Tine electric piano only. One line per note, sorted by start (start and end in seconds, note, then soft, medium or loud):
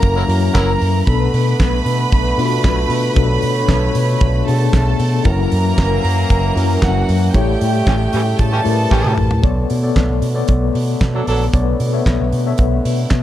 0.00 0.28 F#3 medium
0.00 0.28 C#4 medium
0.00 0.29 E4 medium
0.00 1.08 A4 medium
0.00 0.30 A#4 loud
0.28 0.90 F#3 medium
0.28 0.90 C#4 medium
0.28 0.91 E4 medium
0.28 0.91 A#4 medium
1.06 1.89 B2 medium
1.06 1.89 B3 medium
1.06 1.90 D4 medium
1.06 1.90 A4 loud
2.37 2.99 B2 medium
2.37 2.99 B3 medium
2.37 3.00 D4 medium
2.37 2.44 F4 medium
2.45 3.03 F#4 loud
3.15 3.98 B2 loud
3.15 3.99 B3 medium
3.15 3.99 D4 medium
3.15 3.99 A4 loud
4.46 5.08 B2 medium
4.46 5.08 B3 medium
4.46 5.09 D4 medium
4.46 4.53 G#4 medium
4.54 5.12 A4 loud
5.24 6.07 F#3 loud
5.24 6.07 C#4 medium
5.24 6.07 E4 medium
5.24 6.08 A#4 loud
6.55 7.17 F#3 medium
6.55 7.18 C#4 medium
6.55 7.18 E4 medium
6.55 7.18 A#4 loud
7.34 8.16 A3 loud
7.34 8.17 E4 medium
7.34 8.17 G4 medium
7.34 8.17 C#5 loud
8.64 9.27 A3 medium
8.64 9.27 E4 medium
8.64 9.27 G4 medium
8.64 8.72 A#4 medium
8.71 9.30 B4 loud
9.42 9.74 B3 medium
9.42 9.74 A4 medium
9.42 9.75 C#5 medium
9.42 9.75 D5 loud
9.83 10.24 B3 medium
9.83 10.24 A4 medium
9.83 10.24 C#5 medium
9.83 10.25 D5 medium
10.34 11.17 B3 medium
10.34 11.17 A4 medium
10.34 11.18 C#5 medium
10.34 11.18 D5 medium
11.53 11.84 B3 medium
11.53 11.85 A4 medium
11.53 11.85 C#5 medium
11.53 11.85 D5 loud
11.93 12.34 B3 medium
11.93 12.34 A4 medium
11.93 12.35 C#5 medium
11.93 12.35 E5 medium
12.46 13.23 B3 medium
12.46 13.23 A4 medium
12.46 13.23 C#5 medium
12.46 13.23 E5 loud